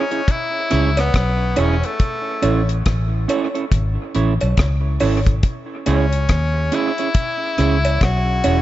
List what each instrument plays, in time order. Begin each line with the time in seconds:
Already playing: tenor saxophone C#4
0.11 clean electric guitar C#4 E4 G#4 C#5, closed hi-hat
0.28 tenor saxophone E4, kick, closed hi-hat
0.70 fingered electric bass C#2, clean electric guitar C#4 E4 G#4 C#5, cross-stick, closed hi-hat
0.97 tenor saxophone B3, cross-stick, closed hi-hat, cowbell
1.14 fingered electric bass B1, kick, cross-stick, closed hi-hat
1.56 fingered electric bass E1, clean electric guitar C#4 E4 G#4 C#5, tenor saxophone C#4, closed hi-hat, cowbell
1.83 tenor saxophone A3, closed hi-hat
2.00 kick, closed hi-hat
2.42 fingered electric bass A1, clean electric guitar C#4 E4 A4 C#5, closed hi-hat, cowbell
2.69 closed hi-hat
2.86 fingered electric bass A1, kick, cross-stick, closed hi-hat
3.28 clean electric guitar C#4 E4 A4 C#5, closed hi-hat, cowbell
3.54 clean electric guitar C#4 E4 A4 C#5, closed hi-hat
3.72 fingered electric bass G#1, kick, closed hi-hat
4.15 fingered electric bass A1, clean electric guitar C#4 E4 A4 C#5, closed hi-hat
4.41 fingered electric bass B1, closed hi-hat, cowbell
4.57 fingered electric bass C#2, kick, cross-stick, closed hi-hat
5.00 fingered electric bass G#1, clean electric guitar C#4 E4 A4 C#5, open hi-hat, cowbell
5.26 kick, closed hi-hat
5.43 kick, closed hi-hat
5.86 fingered electric bass C#2, clean electric guitar C#4 E4 G#4 C#5, tenor saxophone C#4, closed hi-hat, cowbell
6.13 closed hi-hat
6.29 fingered electric bass D#2, kick, cross-stick, closed hi-hat
6.72 clean electric guitar C#4 E4 G#4 C#5, tenor saxophone E4, closed hi-hat
6.98 clean electric guitar C#4 E4 G#4 C#5, closed hi-hat
7.14 kick, closed hi-hat
7.58 fingered electric bass C#2, clean electric guitar C#4 E4 G#4 C#5, cross-stick, closed hi-hat
7.85 closed hi-hat, cowbell
8.01 fingered electric bass B1, tenor saxophone F#4, kick, cross-stick, closed hi-hat
8.44 fingered electric bass E1, clean electric guitar C#4 E4 G#4 C#5, closed hi-hat, cowbell